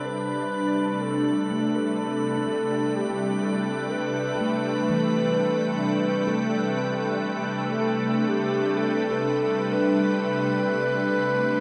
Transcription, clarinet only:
\new Staff \with { instrumentName = "Clarinet" } { \time 4/4 \key c \major \tempo 4 = 62 b'4 a'8. b'16 a'4 g'8 a'8 | b'2. r4 | a'8 g'8 a'4 b'2 | }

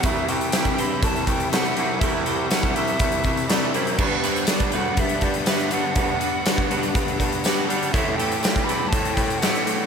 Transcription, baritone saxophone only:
\new Staff \with { instrumentName = "Baritone saxophone" } { \clef bass \time 4/4 \key g \major \tempo 4 = 122 c,8 c,8 c,8 g,8 c,8 c,8 c,8 c,8 | c,8 c,8 c,8 c,8 c,8 c,8 c,8 fis,8 | g,8 g,8 g,8 d,8 g,8 g,8 g,8 g,8 | g,8 r8 g,8 g,8 g,8 g,8 g,8 g8 |
a,8 a,8 a,8 e,8 a,8 a,8 a,8 a,8 | }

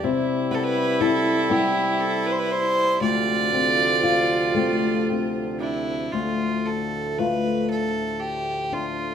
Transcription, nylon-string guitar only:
\new Staff \with { instrumentName = "Nylon-string guitar" } { \time 6/8 \key d \dorian \tempo 4. = 39 c8 b8 e'8 <g b e'>4. | d,8 c'8 f'8 <a c'>8 c'4 | d,4 <a d' f'>4. d'8 | }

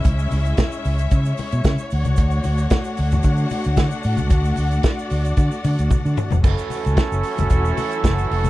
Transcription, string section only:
\new Staff \with { instrumentName = "String section" } { \time 4/4 \key fis \minor \tempo 4 = 113 << { <gis cis' e' e''>2.~ <gis cis' e' e''>8 <a d' fis' fis''>8~ | <a d' fis' fis''>1~ | <a d' fis' fis''>1 | <e fis a fis'>1 | } \\ { cis''1~ | cis''2.~ cis''8 d''8~ | d''1 | cis'1 | } >> }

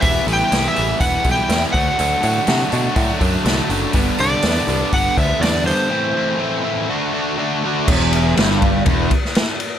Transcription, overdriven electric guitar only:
\new Staff \with { instrumentName = "Overdriven electric guitar" } { \time 4/4 \key e \minor \tempo 4 = 122 <e g b e'>8 <e g b e'>8 <e g b e'>8 <e g b e'>8 <e g b e'>8 <e g b e'>8 <e g b e'>8 <d fis a d'>8 | <d fis a d'>8 <d fis a d'>8 <d fis a d'>8 <d fis a d'>8 <d fis a d'>8 <d fis a d'>8 <d fis a d'>8 <d fis a d'>8 | <g, d g b d'>8 <g, d g b d'>8 <g, d g b d'>8 <g, d g b d'>8 <g, d g b d'>8 <g, d g b d'>8 <g, d g b d'>8 <g, d g b d'>8 | <a, e a c' e'>8 <a, e a c' e'>8 <a, e a c' e'>8 <a, e a c' e'>8 <d a d' fis'>8 <d a d' fis'>8 <d a d' fis'>8 <d a d' fis'>8 |
e,4 g,4 e,8 r4. | }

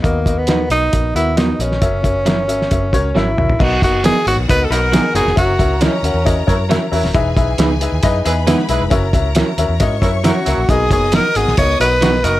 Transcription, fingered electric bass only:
\new Staff \with { instrumentName = "Fingered electric bass" } { \clef bass \time 4/4 \key b \major \tempo 4 = 135 dis,4. b,,8 ais,,8 dis,4 ais,,8 | fis,,4. gis,,8 fis,,8 cis,8 gis,,8 ais,,8 | b,,8 fis,,8. r16 gis,,16 ais,,16 cis,8 b,,8. r16 fis,,16 eis,,16 | fis,,8 cis,8. r16 dis,16 e,8. fis,8. r16 e,16 dis,,16 |
e,,8 b,,8 cis,8. dis,16 fis,8 e,8. r16 b,,16 eis,,16 | fis,,8 cis,8. r16 dis,16 e,16 gis,8 fis,8. r16 cis,16 ais,,16 | b,,8 fis,,8. r16 gis,,16 ais,,16 cis,8 b,,4 fis,,8 | }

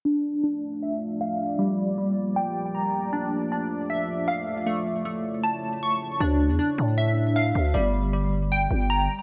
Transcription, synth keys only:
\new Staff \with { instrumentName = "Synth keys" } { \time 4/4 \key d \minor \tempo 4 = 156 d'4 d'4 e''4 f''4 | g4 g4 g''4 bes''4 | d'4 d'4 e''4 f''4 | a4 a4 a''4 cis'''4 |
d'4 d'4 e''4 f''4 | g4 g4 g''4 bes''4 | }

